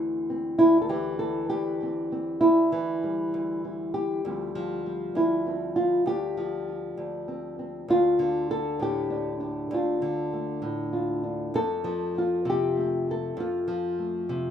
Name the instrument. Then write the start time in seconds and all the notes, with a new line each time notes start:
nylon-string guitar
Already playing: D2 E3 A3 C4
0.30 C4
0.59 D2 E4
0.81 A4
0.89 E3 G4
1.19 A4
1.50 D2 G4
1.83 C4
2.12 C4
2.41 D2 E4
2.72 E3
3.04 G3
3.34 D2
3.65 E4
3.94 G4
4.25 D2 F3 G3 C4
4.55 F3
4.86 G3
5.15 D2 E4
5.47 C4
5.76 F4
6.06 D2 G4
6.37 F3
6.97 D2
7.28 C4
7.59 C4
7.88 D2 F4
8.19 D3
8.51 A4
8.80 A2 G4
9.10 D4
9.40 D4
9.71 D2 F4
10.02 D3
10.34 A3
10.62 A2
10.93 F4
11.24 D4
11.54 F2 A4
11.84 F3
12.18 F4
12.45 C3
12.50 G4
12.77 A3
13.11 A4
13.37 F2 F4
13.68 F3
13.99 A3
14.29 C3